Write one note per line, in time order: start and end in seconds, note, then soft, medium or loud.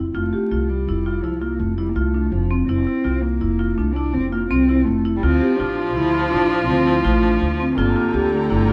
0.00 0.13 F1 medium
0.15 0.30 F1 medium
0.15 0.70 A3 medium
0.15 0.28 F4 medium
0.33 0.46 G4 medium
0.51 0.89 C2 medium
0.51 0.77 F4 medium
0.69 1.25 G3 medium
0.88 1.18 F1 medium
0.88 1.01 E4 medium
1.06 1.19 F4 medium
1.23 1.61 C2 medium
1.23 1.43 F3 medium
1.23 1.37 E4 medium
1.41 1.60 A#3 medium
1.41 1.67 F4 medium
1.59 1.91 F1 medium
1.59 1.77 A3 medium
1.77 1.90 G3 medium
1.77 1.91 E4 medium
1.89 1.97 A#3 medium
1.95 2.27 C2 medium
1.95 2.33 A3 medium
1.95 2.09 F4 medium
2.14 2.40 D4 medium
2.31 2.63 F1 medium
2.31 2.59 F3 medium
2.51 2.63 C4 medium
2.68 2.84 F1 medium
2.68 3.23 C4 medium
2.68 2.82 E4 medium
2.87 3.00 E4 medium
3.04 3.43 C2 medium
3.04 3.30 F4 medium
3.21 3.77 A#3 medium
3.41 3.72 F1 medium
3.41 3.54 E4 medium
3.59 3.72 F4 medium
3.76 4.15 C2 medium
3.76 3.96 A3 medium
3.76 3.91 D4 medium
3.94 4.15 D4 medium
3.94 4.22 E4 medium
4.13 4.45 F1 medium
4.13 4.31 C4 medium
4.31 4.49 A#3 medium
4.31 4.45 F4 medium
4.49 4.81 C2 medium
4.49 4.86 C4 medium
4.49 4.63 C4 medium
4.69 4.94 E4 medium
4.84 5.18 F1 medium
4.84 5.13 A3 medium
5.05 5.18 E4 medium
5.16 5.25 G3 medium
5.21 5.39 D2 medium
5.21 7.80 F3 loud
5.21 7.75 F3 medium
5.21 5.58 C4 medium
5.21 5.36 F4 medium
5.21 7.75 D5 medium
5.21 7.75 C6 medium
5.41 5.54 G4 medium
5.56 5.96 A1 medium
5.56 5.93 D4 medium
5.56 5.85 F4 medium
5.94 6.27 D2 medium
5.94 6.29 E4 loud
5.94 6.09 E4 medium
6.14 6.27 F4 medium
6.30 6.68 A1 medium
6.30 6.65 D4 medium
6.30 6.45 E4 medium
6.51 6.76 F4 medium
6.67 6.99 D2 medium
6.67 7.01 C4 medium
6.87 7.00 E4 medium
7.04 7.36 A1 medium
7.04 7.55 A3 loud
7.04 7.18 F4 medium
7.23 7.49 D4 medium
7.41 7.72 D2 medium
7.60 7.73 C4 medium
7.77 7.93 G1 medium
7.77 8.73 D3 loud
7.77 8.25 A#3 medium
7.77 7.91 F4 medium
7.77 8.73 G4 medium
7.77 8.73 G5 medium
7.77 8.73 A#5 medium
7.96 8.09 F4 medium
8.14 8.52 D2 medium
8.14 8.40 G4 medium
8.25 8.33 A#3 medium
8.31 8.73 A3 loud
8.50 8.73 G1 medium
8.50 8.63 E4 medium
8.68 8.73 F4 medium